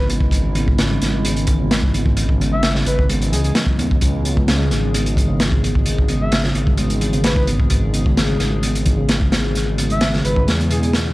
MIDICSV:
0, 0, Header, 1, 6, 480
1, 0, Start_track
1, 0, Key_signature, 4, "minor"
1, 0, Tempo, 461538
1, 336, Time_signature, 4, 2, 24, 8
1, 11579, End_track
2, 0, Start_track
2, 0, Title_t, "Soft synth lead"
2, 0, Program_c, 0, 80
2, 2622, Note_on_c, 0, 76, 99
2, 2799, Note_off_c, 0, 76, 0
2, 2979, Note_on_c, 0, 71, 99
2, 3160, Note_off_c, 0, 71, 0
2, 3454, Note_on_c, 0, 68, 87
2, 3535, Note_off_c, 0, 68, 0
2, 3581, Note_on_c, 0, 68, 74
2, 3655, Note_off_c, 0, 68, 0
2, 6457, Note_on_c, 0, 76, 95
2, 6636, Note_off_c, 0, 76, 0
2, 7528, Note_on_c, 0, 71, 89
2, 7612, Note_off_c, 0, 71, 0
2, 7662, Note_on_c, 0, 71, 83
2, 7735, Note_off_c, 0, 71, 0
2, 10308, Note_on_c, 0, 76, 93
2, 10482, Note_off_c, 0, 76, 0
2, 10653, Note_on_c, 0, 71, 102
2, 10837, Note_off_c, 0, 71, 0
2, 11139, Note_on_c, 0, 68, 90
2, 11218, Note_off_c, 0, 68, 0
2, 11262, Note_on_c, 0, 68, 75
2, 11335, Note_off_c, 0, 68, 0
2, 11579, End_track
3, 0, Start_track
3, 0, Title_t, "Ambient pad"
3, 0, Program_c, 1, 92
3, 0, Note_on_c, 1, 56, 80
3, 0, Note_on_c, 1, 61, 72
3, 0, Note_on_c, 1, 64, 94
3, 4158, Note_off_c, 1, 64, 0
3, 4175, Note_on_c, 1, 68, 94
3, 11579, Note_off_c, 1, 56, 0
3, 11579, Note_off_c, 1, 61, 0
3, 11579, Note_off_c, 1, 68, 0
3, 11579, End_track
4, 0, Start_track
4, 0, Title_t, "Reed electric piano"
4, 0, Program_c, 2, 4
4, 0, Control_c, 2, 64, 127
4, 0, Note_on_c, 2, 49, 101
4, 0, Note_on_c, 2, 52, 107
4, 0, Note_on_c, 2, 56, 80
4, 576, Note_off_c, 2, 49, 0
4, 576, Note_on_c, 2, 49, 77
4, 694, Note_off_c, 2, 49, 0
4, 699, Note_off_c, 2, 56, 0
4, 699, Note_on_c, 2, 56, 81
4, 801, Note_off_c, 2, 56, 0
4, 815, Note_on_c, 2, 49, 77
4, 881, Note_off_c, 2, 49, 0
4, 940, Note_on_c, 2, 49, 77
4, 1050, Note_off_c, 2, 49, 0
4, 1295, Note_on_c, 2, 56, 83
4, 1414, Note_off_c, 2, 56, 0
4, 1530, Note_off_c, 2, 52, 0
4, 1530, Note_on_c, 2, 52, 102
4, 1645, Note_off_c, 2, 52, 0
4, 1660, Note_on_c, 2, 49, 103
4, 1761, Note_off_c, 2, 49, 0
4, 2495, Note_on_c, 2, 49, 77
4, 2614, Note_off_c, 2, 49, 0
4, 2621, Note_on_c, 2, 56, 76
4, 2722, Note_off_c, 2, 56, 0
4, 2735, Note_on_c, 2, 49, 81
4, 2801, Note_off_c, 2, 49, 0
4, 2855, Note_on_c, 2, 49, 80
4, 2967, Note_off_c, 2, 49, 0
4, 3212, Note_on_c, 2, 56, 84
4, 3333, Note_off_c, 2, 56, 0
4, 3452, Note_on_c, 2, 52, 100
4, 3567, Note_off_c, 2, 52, 0
4, 3574, Note_on_c, 2, 59, 78
4, 3679, Note_off_c, 2, 59, 0
4, 3691, Note_on_c, 2, 54, 80
4, 3812, Note_off_c, 2, 54, 0
4, 4410, Note_on_c, 2, 49, 78
4, 4532, Note_off_c, 2, 49, 0
4, 4536, Note_on_c, 2, 56, 79
4, 4640, Note_off_c, 2, 56, 0
4, 4652, Note_on_c, 2, 49, 81
4, 4720, Note_off_c, 2, 49, 0
4, 4778, Note_on_c, 2, 49, 75
4, 4889, Note_off_c, 2, 49, 0
4, 5136, Note_on_c, 2, 56, 87
4, 5255, Note_off_c, 2, 56, 0
4, 5377, Note_on_c, 2, 52, 100
4, 5489, Note_off_c, 2, 52, 0
4, 5498, Note_on_c, 2, 49, 103
4, 5600, Note_off_c, 2, 49, 0
4, 6332, Note_on_c, 2, 49, 79
4, 6453, Note_off_c, 2, 49, 0
4, 6461, Note_on_c, 2, 56, 82
4, 6562, Note_off_c, 2, 56, 0
4, 6575, Note_on_c, 2, 49, 81
4, 6641, Note_off_c, 2, 49, 0
4, 6695, Note_on_c, 2, 49, 75
4, 6807, Note_off_c, 2, 49, 0
4, 7053, Note_on_c, 2, 56, 86
4, 7173, Note_off_c, 2, 56, 0
4, 7294, Note_on_c, 2, 52, 103
4, 7407, Note_off_c, 2, 52, 0
4, 7416, Note_on_c, 2, 49, 107
4, 7520, Note_off_c, 2, 49, 0
4, 8256, Note_on_c, 2, 49, 78
4, 8375, Note_off_c, 2, 49, 0
4, 8375, Note_on_c, 2, 56, 81
4, 8479, Note_off_c, 2, 56, 0
4, 8493, Note_on_c, 2, 49, 81
4, 8560, Note_off_c, 2, 49, 0
4, 8618, Note_on_c, 2, 49, 79
4, 8729, Note_off_c, 2, 49, 0
4, 8970, Note_on_c, 2, 56, 84
4, 9092, Note_off_c, 2, 56, 0
4, 9210, Note_on_c, 2, 52, 103
4, 9325, Note_off_c, 2, 52, 0
4, 9333, Note_on_c, 2, 49, 102
4, 9438, Note_off_c, 2, 49, 0
4, 10174, Note_on_c, 2, 49, 80
4, 10294, Note_off_c, 2, 49, 0
4, 10301, Note_on_c, 2, 56, 84
4, 10402, Note_off_c, 2, 56, 0
4, 10416, Note_on_c, 2, 49, 82
4, 10481, Note_off_c, 2, 49, 0
4, 10540, Note_on_c, 2, 49, 80
4, 10650, Note_off_c, 2, 49, 0
4, 10892, Note_on_c, 2, 56, 85
4, 11013, Note_off_c, 2, 56, 0
4, 11131, Note_on_c, 2, 47, 76
4, 11199, Note_off_c, 2, 47, 0
4, 11257, Note_on_c, 2, 56, 80
4, 11360, Note_off_c, 2, 56, 0
4, 11579, End_track
5, 0, Start_track
5, 0, Title_t, "Detuned saw bass"
5, 0, Program_c, 3, 39
5, 0, Note_on_c, 3, 32, 113
5, 1025, Note_off_c, 3, 32, 0
5, 1054, Note_on_c, 3, 32, 110
5, 2945, Note_off_c, 3, 32, 0
5, 2975, Note_on_c, 3, 32, 113
5, 3454, Note_on_c, 3, 37, 104
5, 3470, Note_off_c, 3, 32, 0
5, 3659, Note_off_c, 3, 37, 0
5, 3938, Note_on_c, 3, 39, 93
5, 4140, Note_off_c, 3, 39, 0
5, 4182, Note_on_c, 3, 37, 102
5, 4894, Note_on_c, 3, 32, 110
5, 4909, Note_off_c, 3, 37, 0
5, 6785, Note_off_c, 3, 32, 0
5, 6812, Note_on_c, 3, 32, 111
5, 8705, Note_off_c, 3, 32, 0
5, 8734, Note_on_c, 3, 32, 112
5, 10626, Note_off_c, 3, 32, 0
5, 10656, Note_on_c, 3, 32, 112
5, 10890, Note_off_c, 3, 32, 0
5, 10897, Note_on_c, 3, 40, 86
5, 11579, Note_off_c, 3, 40, 0
5, 11579, End_track
6, 0, Start_track
6, 0, Title_t, "Drums"
6, 88, Note_on_c, 9, 63, 108
6, 100, Note_on_c, 9, 42, 74
6, 192, Note_off_c, 9, 63, 0
6, 204, Note_off_c, 9, 42, 0
6, 213, Note_on_c, 9, 36, 89
6, 317, Note_off_c, 9, 36, 0
6, 325, Note_on_c, 9, 36, 122
6, 336, Note_on_c, 9, 42, 87
6, 429, Note_off_c, 9, 36, 0
6, 440, Note_off_c, 9, 42, 0
6, 570, Note_on_c, 9, 63, 97
6, 574, Note_on_c, 9, 42, 71
6, 674, Note_off_c, 9, 63, 0
6, 678, Note_off_c, 9, 42, 0
6, 704, Note_on_c, 9, 36, 91
6, 808, Note_off_c, 9, 36, 0
6, 815, Note_on_c, 9, 42, 93
6, 817, Note_on_c, 9, 38, 109
6, 919, Note_off_c, 9, 42, 0
6, 921, Note_off_c, 9, 38, 0
6, 940, Note_on_c, 9, 64, 103
6, 948, Note_on_c, 9, 63, 74
6, 1044, Note_off_c, 9, 64, 0
6, 1052, Note_off_c, 9, 63, 0
6, 1057, Note_on_c, 9, 42, 70
6, 1067, Note_on_c, 9, 38, 42
6, 1161, Note_off_c, 9, 42, 0
6, 1171, Note_off_c, 9, 38, 0
6, 1176, Note_on_c, 9, 64, 103
6, 1280, Note_off_c, 9, 64, 0
6, 1298, Note_on_c, 9, 42, 94
6, 1298, Note_on_c, 9, 63, 104
6, 1402, Note_off_c, 9, 42, 0
6, 1402, Note_off_c, 9, 63, 0
6, 1420, Note_on_c, 9, 42, 47
6, 1524, Note_off_c, 9, 42, 0
6, 1528, Note_on_c, 9, 42, 66
6, 1537, Note_on_c, 9, 36, 89
6, 1632, Note_off_c, 9, 42, 0
6, 1641, Note_off_c, 9, 36, 0
6, 1665, Note_on_c, 9, 63, 71
6, 1769, Note_off_c, 9, 63, 0
6, 1779, Note_on_c, 9, 38, 124
6, 1779, Note_on_c, 9, 42, 98
6, 1883, Note_off_c, 9, 38, 0
6, 1883, Note_off_c, 9, 42, 0
6, 1902, Note_on_c, 9, 36, 96
6, 2006, Note_off_c, 9, 36, 0
6, 2018, Note_on_c, 9, 63, 111
6, 2021, Note_on_c, 9, 42, 73
6, 2122, Note_off_c, 9, 63, 0
6, 2125, Note_off_c, 9, 42, 0
6, 2139, Note_on_c, 9, 36, 93
6, 2243, Note_off_c, 9, 36, 0
6, 2254, Note_on_c, 9, 42, 85
6, 2358, Note_off_c, 9, 42, 0
6, 2380, Note_on_c, 9, 36, 89
6, 2484, Note_off_c, 9, 36, 0
6, 2502, Note_on_c, 9, 63, 94
6, 2509, Note_on_c, 9, 42, 72
6, 2606, Note_off_c, 9, 63, 0
6, 2613, Note_off_c, 9, 42, 0
6, 2733, Note_on_c, 9, 42, 91
6, 2735, Note_on_c, 9, 38, 105
6, 2837, Note_off_c, 9, 42, 0
6, 2839, Note_off_c, 9, 38, 0
6, 2858, Note_on_c, 9, 63, 74
6, 2860, Note_on_c, 9, 64, 99
6, 2862, Note_on_c, 9, 38, 55
6, 2962, Note_off_c, 9, 63, 0
6, 2964, Note_off_c, 9, 64, 0
6, 2966, Note_off_c, 9, 38, 0
6, 2979, Note_on_c, 9, 42, 70
6, 3083, Note_off_c, 9, 42, 0
6, 3105, Note_on_c, 9, 64, 96
6, 3108, Note_on_c, 9, 36, 91
6, 3209, Note_off_c, 9, 64, 0
6, 3212, Note_off_c, 9, 36, 0
6, 3217, Note_on_c, 9, 63, 102
6, 3219, Note_on_c, 9, 42, 93
6, 3321, Note_off_c, 9, 63, 0
6, 3323, Note_off_c, 9, 42, 0
6, 3346, Note_on_c, 9, 42, 51
6, 3450, Note_off_c, 9, 42, 0
6, 3463, Note_on_c, 9, 42, 69
6, 3567, Note_off_c, 9, 42, 0
6, 3581, Note_on_c, 9, 42, 46
6, 3582, Note_on_c, 9, 63, 74
6, 3685, Note_off_c, 9, 42, 0
6, 3686, Note_off_c, 9, 63, 0
6, 3693, Note_on_c, 9, 38, 125
6, 3694, Note_on_c, 9, 42, 101
6, 3797, Note_off_c, 9, 38, 0
6, 3798, Note_off_c, 9, 42, 0
6, 3810, Note_on_c, 9, 36, 91
6, 3914, Note_off_c, 9, 36, 0
6, 3940, Note_on_c, 9, 63, 98
6, 3941, Note_on_c, 9, 42, 73
6, 4044, Note_off_c, 9, 63, 0
6, 4045, Note_off_c, 9, 42, 0
6, 4068, Note_on_c, 9, 36, 102
6, 4172, Note_off_c, 9, 36, 0
6, 4173, Note_on_c, 9, 42, 96
6, 4182, Note_on_c, 9, 36, 116
6, 4277, Note_off_c, 9, 42, 0
6, 4286, Note_off_c, 9, 36, 0
6, 4418, Note_on_c, 9, 63, 98
6, 4420, Note_on_c, 9, 42, 62
6, 4522, Note_off_c, 9, 63, 0
6, 4524, Note_off_c, 9, 42, 0
6, 4545, Note_on_c, 9, 36, 91
6, 4649, Note_off_c, 9, 36, 0
6, 4659, Note_on_c, 9, 42, 89
6, 4660, Note_on_c, 9, 38, 121
6, 4763, Note_off_c, 9, 42, 0
6, 4764, Note_off_c, 9, 38, 0
6, 4775, Note_on_c, 9, 63, 69
6, 4778, Note_on_c, 9, 64, 90
6, 4879, Note_off_c, 9, 63, 0
6, 4882, Note_off_c, 9, 64, 0
6, 4900, Note_on_c, 9, 38, 35
6, 4901, Note_on_c, 9, 42, 63
6, 5004, Note_off_c, 9, 38, 0
6, 5005, Note_off_c, 9, 42, 0
6, 5015, Note_on_c, 9, 64, 97
6, 5119, Note_off_c, 9, 64, 0
6, 5139, Note_on_c, 9, 63, 89
6, 5142, Note_on_c, 9, 42, 88
6, 5243, Note_off_c, 9, 63, 0
6, 5246, Note_off_c, 9, 42, 0
6, 5265, Note_on_c, 9, 42, 46
6, 5369, Note_off_c, 9, 42, 0
6, 5377, Note_on_c, 9, 36, 93
6, 5386, Note_on_c, 9, 42, 65
6, 5481, Note_off_c, 9, 36, 0
6, 5490, Note_off_c, 9, 42, 0
6, 5503, Note_on_c, 9, 63, 64
6, 5607, Note_off_c, 9, 63, 0
6, 5615, Note_on_c, 9, 38, 121
6, 5615, Note_on_c, 9, 42, 97
6, 5719, Note_off_c, 9, 38, 0
6, 5719, Note_off_c, 9, 42, 0
6, 5741, Note_on_c, 9, 36, 109
6, 5845, Note_off_c, 9, 36, 0
6, 5858, Note_on_c, 9, 63, 92
6, 5866, Note_on_c, 9, 42, 73
6, 5962, Note_off_c, 9, 63, 0
6, 5970, Note_off_c, 9, 42, 0
6, 5983, Note_on_c, 9, 36, 89
6, 6087, Note_off_c, 9, 36, 0
6, 6091, Note_on_c, 9, 42, 89
6, 6195, Note_off_c, 9, 42, 0
6, 6223, Note_on_c, 9, 36, 92
6, 6327, Note_off_c, 9, 36, 0
6, 6327, Note_on_c, 9, 42, 71
6, 6339, Note_on_c, 9, 63, 94
6, 6431, Note_off_c, 9, 42, 0
6, 6443, Note_off_c, 9, 63, 0
6, 6570, Note_on_c, 9, 42, 83
6, 6579, Note_on_c, 9, 38, 107
6, 6674, Note_off_c, 9, 42, 0
6, 6683, Note_off_c, 9, 38, 0
6, 6696, Note_on_c, 9, 64, 87
6, 6699, Note_on_c, 9, 38, 51
6, 6701, Note_on_c, 9, 63, 71
6, 6800, Note_off_c, 9, 64, 0
6, 6803, Note_off_c, 9, 38, 0
6, 6805, Note_off_c, 9, 63, 0
6, 6814, Note_on_c, 9, 42, 76
6, 6918, Note_off_c, 9, 42, 0
6, 6936, Note_on_c, 9, 36, 104
6, 6939, Note_on_c, 9, 64, 100
6, 7040, Note_off_c, 9, 36, 0
6, 7043, Note_off_c, 9, 64, 0
6, 7047, Note_on_c, 9, 42, 92
6, 7049, Note_on_c, 9, 63, 84
6, 7151, Note_off_c, 9, 42, 0
6, 7153, Note_off_c, 9, 63, 0
6, 7177, Note_on_c, 9, 42, 46
6, 7281, Note_off_c, 9, 42, 0
6, 7293, Note_on_c, 9, 42, 62
6, 7397, Note_off_c, 9, 42, 0
6, 7414, Note_on_c, 9, 63, 73
6, 7416, Note_on_c, 9, 42, 41
6, 7518, Note_off_c, 9, 63, 0
6, 7520, Note_off_c, 9, 42, 0
6, 7528, Note_on_c, 9, 42, 93
6, 7534, Note_on_c, 9, 38, 121
6, 7632, Note_off_c, 9, 42, 0
6, 7638, Note_off_c, 9, 38, 0
6, 7657, Note_on_c, 9, 36, 108
6, 7761, Note_off_c, 9, 36, 0
6, 7773, Note_on_c, 9, 42, 78
6, 7775, Note_on_c, 9, 63, 98
6, 7877, Note_off_c, 9, 42, 0
6, 7879, Note_off_c, 9, 63, 0
6, 7899, Note_on_c, 9, 36, 90
6, 8003, Note_off_c, 9, 36, 0
6, 8007, Note_on_c, 9, 42, 97
6, 8014, Note_on_c, 9, 36, 111
6, 8111, Note_off_c, 9, 42, 0
6, 8118, Note_off_c, 9, 36, 0
6, 8254, Note_on_c, 9, 42, 65
6, 8256, Note_on_c, 9, 63, 93
6, 8358, Note_off_c, 9, 42, 0
6, 8360, Note_off_c, 9, 63, 0
6, 8380, Note_on_c, 9, 36, 92
6, 8484, Note_off_c, 9, 36, 0
6, 8500, Note_on_c, 9, 38, 108
6, 8500, Note_on_c, 9, 42, 88
6, 8604, Note_off_c, 9, 38, 0
6, 8604, Note_off_c, 9, 42, 0
6, 8607, Note_on_c, 9, 63, 68
6, 8615, Note_on_c, 9, 64, 89
6, 8711, Note_off_c, 9, 63, 0
6, 8719, Note_off_c, 9, 64, 0
6, 8735, Note_on_c, 9, 38, 40
6, 8736, Note_on_c, 9, 42, 70
6, 8839, Note_off_c, 9, 38, 0
6, 8840, Note_off_c, 9, 42, 0
6, 8858, Note_on_c, 9, 64, 86
6, 8962, Note_off_c, 9, 64, 0
6, 8970, Note_on_c, 9, 63, 93
6, 8975, Note_on_c, 9, 42, 82
6, 9074, Note_off_c, 9, 63, 0
6, 9079, Note_off_c, 9, 42, 0
6, 9104, Note_on_c, 9, 42, 47
6, 9208, Note_off_c, 9, 42, 0
6, 9211, Note_on_c, 9, 42, 68
6, 9217, Note_on_c, 9, 36, 90
6, 9315, Note_off_c, 9, 42, 0
6, 9321, Note_off_c, 9, 36, 0
6, 9333, Note_on_c, 9, 63, 66
6, 9437, Note_off_c, 9, 63, 0
6, 9450, Note_on_c, 9, 42, 98
6, 9456, Note_on_c, 9, 38, 110
6, 9554, Note_off_c, 9, 42, 0
6, 9560, Note_off_c, 9, 38, 0
6, 9580, Note_on_c, 9, 36, 102
6, 9684, Note_off_c, 9, 36, 0
6, 9690, Note_on_c, 9, 63, 86
6, 9694, Note_on_c, 9, 38, 111
6, 9697, Note_on_c, 9, 42, 81
6, 9794, Note_off_c, 9, 63, 0
6, 9798, Note_off_c, 9, 38, 0
6, 9801, Note_off_c, 9, 42, 0
6, 9936, Note_on_c, 9, 42, 62
6, 9939, Note_on_c, 9, 38, 34
6, 10040, Note_off_c, 9, 42, 0
6, 10043, Note_off_c, 9, 38, 0
6, 10172, Note_on_c, 9, 63, 91
6, 10173, Note_on_c, 9, 42, 78
6, 10276, Note_off_c, 9, 63, 0
6, 10277, Note_off_c, 9, 42, 0
6, 10296, Note_on_c, 9, 42, 39
6, 10302, Note_on_c, 9, 64, 76
6, 10400, Note_off_c, 9, 42, 0
6, 10406, Note_off_c, 9, 64, 0
6, 10408, Note_on_c, 9, 42, 87
6, 10412, Note_on_c, 9, 38, 120
6, 10512, Note_off_c, 9, 42, 0
6, 10516, Note_off_c, 9, 38, 0
6, 10538, Note_on_c, 9, 38, 50
6, 10542, Note_on_c, 9, 64, 84
6, 10546, Note_on_c, 9, 63, 69
6, 10642, Note_off_c, 9, 38, 0
6, 10646, Note_off_c, 9, 64, 0
6, 10650, Note_off_c, 9, 63, 0
6, 10657, Note_on_c, 9, 42, 75
6, 10761, Note_off_c, 9, 42, 0
6, 10777, Note_on_c, 9, 64, 100
6, 10779, Note_on_c, 9, 36, 89
6, 10881, Note_off_c, 9, 64, 0
6, 10883, Note_off_c, 9, 36, 0
6, 10894, Note_on_c, 9, 63, 88
6, 10899, Note_on_c, 9, 42, 83
6, 10905, Note_on_c, 9, 38, 100
6, 10998, Note_off_c, 9, 63, 0
6, 11003, Note_off_c, 9, 42, 0
6, 11009, Note_off_c, 9, 38, 0
6, 11030, Note_on_c, 9, 42, 42
6, 11134, Note_off_c, 9, 42, 0
6, 11135, Note_on_c, 9, 42, 71
6, 11239, Note_off_c, 9, 42, 0
6, 11261, Note_on_c, 9, 63, 70
6, 11264, Note_on_c, 9, 42, 44
6, 11365, Note_off_c, 9, 63, 0
6, 11368, Note_off_c, 9, 42, 0
6, 11372, Note_on_c, 9, 38, 107
6, 11381, Note_on_c, 9, 42, 87
6, 11476, Note_off_c, 9, 38, 0
6, 11485, Note_off_c, 9, 42, 0
6, 11579, End_track
0, 0, End_of_file